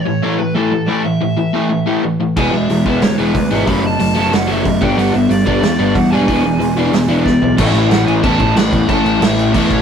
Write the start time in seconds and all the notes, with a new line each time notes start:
Already playing: C#5
0.06 A2 E3
0.23 A2 E3 A3
0.38 A2 E3 B4
0.54 A2 E3 A3 A4
0.72 A2 E3
0.86 A2 E3 A3 D5
1.04 A2 E3 E5
1.21 A2 E3
1.37 A2 E3
1.53 A2 E3 A3
1.70 A2 E3
1.86 A2 E3 A3
2.03 A2 E3
2.20 A2 E3
2.37 E1 E3 G#3 B3 G#5, kick, crash
2.52 E1 E3 G#3 E5
2.69 E1 E3 G#3, open hi-hat
2.86 E1 E3 G#3 B3, kick
3.02 D2 E3 G#3 C#5, snare, open hi-hat
3.18 E1 E3 G#3 B3 B4
3.35 D2 E3 G#3, kick, open hi-hat
3.51 G#1 E3 G#3 B3 E5
3.66 F#1 F#3 A3 C#4 B5, kick, open hi-hat
3.82 F#3 A3
3.86 A5
3.99 F#1 F#3 A3, open hi-hat
4.15 F#1 F#3 A3 C#4
4.32 F#1 F#3 A3 F#5, snare, open hi-hat
4.47 F#1 F#3 A3 C#4 E5
4.65 F#1 F#3 A3, kick, open hi-hat
4.81 G1 G3 B3 D4 G5, kick
4.97 G1 G3 B3 D4 F#5, open hi-hat
5.14 G1 G3 B3 E5
5.29 G1 G3 B3 D5, open hi-hat
5.46 G1 G3 B3 D4, kick
5.55 D5
5.62 E2 G3 B3, snare, open hi-hat
5.79 G1 G3 B3 D4
5.87 D5
5.94 E2 G3 B3 F#5, kick, open hi-hat
6.10 E1 G3 B3 D4 G#5
6.28 E1 E3 B3 D4, kick, open hi-hat
6.45 E3 B3
6.59 E1 E3 B3, open hi-hat
6.77 E1 E3 B3 D4
6.92 E1 E3 B3, snare, open hi-hat
7.09 E1 E3 B3 D4
7.24 E1 E3 B3 D5, kick, snare
7.41 B1 E3 B3, floor tom
7.57 A1 A2 E3 A3 C#4 E5, kick, crash
7.61 E4
7.73 A1, crash
7.89 A1 F#5, snare, crash
8.06 A1 G#5, crash
8.23 E2 A2 E3 A3 C#4 E4 A5, kick, crash
8.40 A1, kick, crash
8.56 A1 B5, snare, crash
8.73 E2, kick, crash
8.87 A1 A2 E3 A3 C#4 A5, kick, crash
8.91 E4
9.05 A1, crash
9.21 A1 E5, snare, crash
9.39 crash
9.52 E2 A2 E3 A3 C#4 E4 E5, kick, crash
9.69 A1 C#5, kick, crash